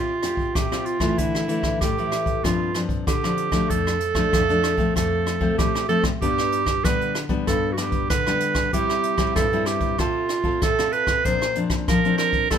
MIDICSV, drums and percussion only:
0, 0, Header, 1, 2, 480
1, 0, Start_track
1, 0, Tempo, 628931
1, 904, Time_signature, 4, 2, 24, 8
1, 9603, End_track
2, 0, Start_track
2, 0, Title_t, "Drums"
2, 172, Note_on_c, 9, 37, 64
2, 172, Note_on_c, 9, 42, 43
2, 248, Note_off_c, 9, 37, 0
2, 248, Note_off_c, 9, 42, 0
2, 284, Note_on_c, 9, 36, 64
2, 361, Note_off_c, 9, 36, 0
2, 423, Note_on_c, 9, 36, 88
2, 423, Note_on_c, 9, 37, 69
2, 423, Note_on_c, 9, 42, 62
2, 499, Note_off_c, 9, 36, 0
2, 499, Note_off_c, 9, 37, 0
2, 499, Note_off_c, 9, 42, 0
2, 550, Note_on_c, 9, 37, 66
2, 550, Note_on_c, 9, 42, 28
2, 626, Note_off_c, 9, 37, 0
2, 626, Note_off_c, 9, 42, 0
2, 653, Note_on_c, 9, 42, 47
2, 730, Note_off_c, 9, 42, 0
2, 765, Note_on_c, 9, 36, 68
2, 765, Note_on_c, 9, 37, 70
2, 765, Note_on_c, 9, 42, 30
2, 841, Note_off_c, 9, 36, 0
2, 842, Note_off_c, 9, 37, 0
2, 842, Note_off_c, 9, 42, 0
2, 902, Note_on_c, 9, 42, 66
2, 903, Note_on_c, 9, 36, 65
2, 979, Note_off_c, 9, 36, 0
2, 979, Note_off_c, 9, 42, 0
2, 1029, Note_on_c, 9, 37, 61
2, 1105, Note_off_c, 9, 37, 0
2, 1135, Note_on_c, 9, 42, 47
2, 1211, Note_off_c, 9, 42, 0
2, 1245, Note_on_c, 9, 36, 62
2, 1247, Note_on_c, 9, 37, 65
2, 1247, Note_on_c, 9, 42, 30
2, 1322, Note_off_c, 9, 36, 0
2, 1324, Note_off_c, 9, 37, 0
2, 1324, Note_off_c, 9, 42, 0
2, 1383, Note_on_c, 9, 36, 84
2, 1383, Note_on_c, 9, 37, 65
2, 1383, Note_on_c, 9, 42, 64
2, 1459, Note_off_c, 9, 37, 0
2, 1459, Note_off_c, 9, 42, 0
2, 1460, Note_off_c, 9, 36, 0
2, 1513, Note_on_c, 9, 42, 31
2, 1589, Note_off_c, 9, 42, 0
2, 1616, Note_on_c, 9, 37, 66
2, 1616, Note_on_c, 9, 42, 48
2, 1693, Note_off_c, 9, 37, 0
2, 1693, Note_off_c, 9, 42, 0
2, 1726, Note_on_c, 9, 36, 67
2, 1728, Note_on_c, 9, 42, 33
2, 1802, Note_off_c, 9, 36, 0
2, 1804, Note_off_c, 9, 42, 0
2, 1864, Note_on_c, 9, 36, 64
2, 1865, Note_on_c, 9, 37, 67
2, 1865, Note_on_c, 9, 42, 69
2, 1940, Note_off_c, 9, 36, 0
2, 1942, Note_off_c, 9, 37, 0
2, 1942, Note_off_c, 9, 42, 0
2, 2095, Note_on_c, 9, 37, 64
2, 2095, Note_on_c, 9, 42, 49
2, 2171, Note_off_c, 9, 37, 0
2, 2171, Note_off_c, 9, 42, 0
2, 2206, Note_on_c, 9, 36, 68
2, 2207, Note_on_c, 9, 42, 32
2, 2282, Note_off_c, 9, 36, 0
2, 2283, Note_off_c, 9, 42, 0
2, 2344, Note_on_c, 9, 36, 87
2, 2346, Note_on_c, 9, 37, 69
2, 2346, Note_on_c, 9, 42, 69
2, 2421, Note_off_c, 9, 36, 0
2, 2422, Note_off_c, 9, 37, 0
2, 2422, Note_off_c, 9, 42, 0
2, 2472, Note_on_c, 9, 37, 65
2, 2472, Note_on_c, 9, 42, 31
2, 2549, Note_off_c, 9, 37, 0
2, 2549, Note_off_c, 9, 42, 0
2, 2574, Note_on_c, 9, 42, 51
2, 2651, Note_off_c, 9, 42, 0
2, 2686, Note_on_c, 9, 36, 68
2, 2686, Note_on_c, 9, 37, 68
2, 2686, Note_on_c, 9, 42, 31
2, 2762, Note_off_c, 9, 36, 0
2, 2763, Note_off_c, 9, 37, 0
2, 2763, Note_off_c, 9, 42, 0
2, 2825, Note_on_c, 9, 36, 62
2, 2825, Note_on_c, 9, 42, 67
2, 2901, Note_off_c, 9, 36, 0
2, 2901, Note_off_c, 9, 42, 0
2, 2953, Note_on_c, 9, 37, 63
2, 2953, Note_on_c, 9, 42, 29
2, 3029, Note_off_c, 9, 37, 0
2, 3029, Note_off_c, 9, 42, 0
2, 3055, Note_on_c, 9, 42, 50
2, 3132, Note_off_c, 9, 42, 0
2, 3166, Note_on_c, 9, 36, 65
2, 3167, Note_on_c, 9, 37, 67
2, 3167, Note_on_c, 9, 42, 30
2, 3242, Note_off_c, 9, 36, 0
2, 3243, Note_off_c, 9, 37, 0
2, 3243, Note_off_c, 9, 42, 0
2, 3305, Note_on_c, 9, 36, 84
2, 3306, Note_on_c, 9, 37, 67
2, 3306, Note_on_c, 9, 42, 64
2, 3381, Note_off_c, 9, 36, 0
2, 3383, Note_off_c, 9, 37, 0
2, 3383, Note_off_c, 9, 42, 0
2, 3434, Note_on_c, 9, 42, 30
2, 3510, Note_off_c, 9, 42, 0
2, 3537, Note_on_c, 9, 37, 66
2, 3537, Note_on_c, 9, 42, 48
2, 3614, Note_off_c, 9, 37, 0
2, 3614, Note_off_c, 9, 42, 0
2, 3647, Note_on_c, 9, 36, 71
2, 3650, Note_on_c, 9, 42, 30
2, 3724, Note_off_c, 9, 36, 0
2, 3726, Note_off_c, 9, 42, 0
2, 3785, Note_on_c, 9, 36, 63
2, 3787, Note_on_c, 9, 37, 66
2, 3787, Note_on_c, 9, 42, 64
2, 3862, Note_off_c, 9, 36, 0
2, 3863, Note_off_c, 9, 37, 0
2, 3863, Note_off_c, 9, 42, 0
2, 4019, Note_on_c, 9, 37, 64
2, 4019, Note_on_c, 9, 42, 44
2, 4095, Note_off_c, 9, 37, 0
2, 4095, Note_off_c, 9, 42, 0
2, 4127, Note_on_c, 9, 36, 68
2, 4203, Note_off_c, 9, 36, 0
2, 4264, Note_on_c, 9, 37, 65
2, 4264, Note_on_c, 9, 42, 60
2, 4265, Note_on_c, 9, 36, 89
2, 4341, Note_off_c, 9, 36, 0
2, 4341, Note_off_c, 9, 37, 0
2, 4341, Note_off_c, 9, 42, 0
2, 4391, Note_on_c, 9, 37, 66
2, 4391, Note_on_c, 9, 42, 29
2, 4467, Note_off_c, 9, 37, 0
2, 4467, Note_off_c, 9, 42, 0
2, 4495, Note_on_c, 9, 42, 44
2, 4571, Note_off_c, 9, 42, 0
2, 4606, Note_on_c, 9, 36, 67
2, 4606, Note_on_c, 9, 37, 70
2, 4606, Note_on_c, 9, 42, 30
2, 4683, Note_off_c, 9, 36, 0
2, 4683, Note_off_c, 9, 37, 0
2, 4683, Note_off_c, 9, 42, 0
2, 4745, Note_on_c, 9, 36, 65
2, 4746, Note_on_c, 9, 42, 61
2, 4821, Note_off_c, 9, 36, 0
2, 4823, Note_off_c, 9, 42, 0
2, 4872, Note_on_c, 9, 37, 63
2, 4948, Note_off_c, 9, 37, 0
2, 4976, Note_on_c, 9, 42, 47
2, 5052, Note_off_c, 9, 42, 0
2, 5086, Note_on_c, 9, 36, 62
2, 5086, Note_on_c, 9, 37, 68
2, 5086, Note_on_c, 9, 42, 29
2, 5162, Note_off_c, 9, 37, 0
2, 5162, Note_off_c, 9, 42, 0
2, 5163, Note_off_c, 9, 36, 0
2, 5225, Note_on_c, 9, 36, 89
2, 5225, Note_on_c, 9, 37, 63
2, 5225, Note_on_c, 9, 42, 65
2, 5301, Note_off_c, 9, 36, 0
2, 5301, Note_off_c, 9, 37, 0
2, 5301, Note_off_c, 9, 42, 0
2, 5352, Note_on_c, 9, 42, 29
2, 5428, Note_off_c, 9, 42, 0
2, 5456, Note_on_c, 9, 37, 68
2, 5456, Note_on_c, 9, 42, 48
2, 5533, Note_off_c, 9, 37, 0
2, 5533, Note_off_c, 9, 42, 0
2, 5566, Note_on_c, 9, 36, 67
2, 5566, Note_on_c, 9, 42, 32
2, 5642, Note_off_c, 9, 36, 0
2, 5642, Note_off_c, 9, 42, 0
2, 5704, Note_on_c, 9, 36, 67
2, 5704, Note_on_c, 9, 37, 69
2, 5704, Note_on_c, 9, 42, 64
2, 5780, Note_off_c, 9, 36, 0
2, 5780, Note_off_c, 9, 37, 0
2, 5780, Note_off_c, 9, 42, 0
2, 5933, Note_on_c, 9, 37, 63
2, 5933, Note_on_c, 9, 42, 49
2, 6010, Note_off_c, 9, 37, 0
2, 6010, Note_off_c, 9, 42, 0
2, 6043, Note_on_c, 9, 42, 32
2, 6045, Note_on_c, 9, 36, 70
2, 6119, Note_off_c, 9, 42, 0
2, 6121, Note_off_c, 9, 36, 0
2, 6181, Note_on_c, 9, 37, 70
2, 6181, Note_on_c, 9, 42, 65
2, 6183, Note_on_c, 9, 36, 86
2, 6258, Note_off_c, 9, 37, 0
2, 6258, Note_off_c, 9, 42, 0
2, 6260, Note_off_c, 9, 36, 0
2, 6308, Note_on_c, 9, 37, 64
2, 6308, Note_on_c, 9, 42, 34
2, 6385, Note_off_c, 9, 37, 0
2, 6385, Note_off_c, 9, 42, 0
2, 6413, Note_on_c, 9, 42, 52
2, 6489, Note_off_c, 9, 42, 0
2, 6523, Note_on_c, 9, 37, 66
2, 6523, Note_on_c, 9, 42, 33
2, 6525, Note_on_c, 9, 36, 66
2, 6599, Note_off_c, 9, 37, 0
2, 6599, Note_off_c, 9, 42, 0
2, 6601, Note_off_c, 9, 36, 0
2, 6664, Note_on_c, 9, 36, 63
2, 6664, Note_on_c, 9, 42, 67
2, 6740, Note_off_c, 9, 36, 0
2, 6740, Note_off_c, 9, 42, 0
2, 6789, Note_on_c, 9, 37, 59
2, 6789, Note_on_c, 9, 42, 31
2, 6865, Note_off_c, 9, 37, 0
2, 6865, Note_off_c, 9, 42, 0
2, 6894, Note_on_c, 9, 42, 53
2, 6971, Note_off_c, 9, 42, 0
2, 7004, Note_on_c, 9, 37, 67
2, 7004, Note_on_c, 9, 42, 31
2, 7005, Note_on_c, 9, 36, 67
2, 7080, Note_off_c, 9, 37, 0
2, 7080, Note_off_c, 9, 42, 0
2, 7082, Note_off_c, 9, 36, 0
2, 7142, Note_on_c, 9, 37, 68
2, 7142, Note_on_c, 9, 42, 65
2, 7144, Note_on_c, 9, 36, 84
2, 7219, Note_off_c, 9, 37, 0
2, 7219, Note_off_c, 9, 42, 0
2, 7220, Note_off_c, 9, 36, 0
2, 7269, Note_on_c, 9, 42, 32
2, 7345, Note_off_c, 9, 42, 0
2, 7372, Note_on_c, 9, 37, 67
2, 7372, Note_on_c, 9, 42, 48
2, 7448, Note_off_c, 9, 37, 0
2, 7448, Note_off_c, 9, 42, 0
2, 7481, Note_on_c, 9, 42, 33
2, 7485, Note_on_c, 9, 36, 69
2, 7558, Note_off_c, 9, 42, 0
2, 7561, Note_off_c, 9, 36, 0
2, 7621, Note_on_c, 9, 37, 63
2, 7621, Note_on_c, 9, 42, 60
2, 7624, Note_on_c, 9, 36, 68
2, 7697, Note_off_c, 9, 37, 0
2, 7697, Note_off_c, 9, 42, 0
2, 7700, Note_off_c, 9, 36, 0
2, 7853, Note_on_c, 9, 37, 63
2, 7853, Note_on_c, 9, 42, 43
2, 7930, Note_off_c, 9, 37, 0
2, 7930, Note_off_c, 9, 42, 0
2, 7966, Note_on_c, 9, 36, 65
2, 8043, Note_off_c, 9, 36, 0
2, 8103, Note_on_c, 9, 37, 68
2, 8103, Note_on_c, 9, 42, 66
2, 8105, Note_on_c, 9, 36, 86
2, 8180, Note_off_c, 9, 37, 0
2, 8180, Note_off_c, 9, 42, 0
2, 8182, Note_off_c, 9, 36, 0
2, 8232, Note_on_c, 9, 37, 63
2, 8232, Note_on_c, 9, 42, 29
2, 8308, Note_off_c, 9, 37, 0
2, 8308, Note_off_c, 9, 42, 0
2, 8337, Note_on_c, 9, 42, 44
2, 8413, Note_off_c, 9, 42, 0
2, 8448, Note_on_c, 9, 36, 67
2, 8449, Note_on_c, 9, 37, 68
2, 8449, Note_on_c, 9, 42, 30
2, 8525, Note_off_c, 9, 36, 0
2, 8525, Note_off_c, 9, 37, 0
2, 8525, Note_off_c, 9, 42, 0
2, 8586, Note_on_c, 9, 42, 65
2, 8587, Note_on_c, 9, 36, 68
2, 8663, Note_off_c, 9, 36, 0
2, 8663, Note_off_c, 9, 42, 0
2, 8713, Note_on_c, 9, 37, 65
2, 8789, Note_off_c, 9, 37, 0
2, 8817, Note_on_c, 9, 42, 49
2, 8893, Note_off_c, 9, 42, 0
2, 8928, Note_on_c, 9, 37, 66
2, 8928, Note_on_c, 9, 42, 29
2, 8929, Note_on_c, 9, 36, 69
2, 9004, Note_off_c, 9, 37, 0
2, 9004, Note_off_c, 9, 42, 0
2, 9005, Note_off_c, 9, 36, 0
2, 9068, Note_on_c, 9, 36, 85
2, 9068, Note_on_c, 9, 37, 71
2, 9068, Note_on_c, 9, 42, 64
2, 9144, Note_off_c, 9, 36, 0
2, 9144, Note_off_c, 9, 37, 0
2, 9144, Note_off_c, 9, 42, 0
2, 9194, Note_on_c, 9, 42, 30
2, 9270, Note_off_c, 9, 42, 0
2, 9297, Note_on_c, 9, 37, 66
2, 9297, Note_on_c, 9, 42, 48
2, 9373, Note_off_c, 9, 37, 0
2, 9373, Note_off_c, 9, 42, 0
2, 9406, Note_on_c, 9, 42, 31
2, 9409, Note_on_c, 9, 36, 67
2, 9482, Note_off_c, 9, 42, 0
2, 9485, Note_off_c, 9, 36, 0
2, 9544, Note_on_c, 9, 37, 66
2, 9544, Note_on_c, 9, 42, 61
2, 9547, Note_on_c, 9, 36, 67
2, 9603, Note_off_c, 9, 36, 0
2, 9603, Note_off_c, 9, 37, 0
2, 9603, Note_off_c, 9, 42, 0
2, 9603, End_track
0, 0, End_of_file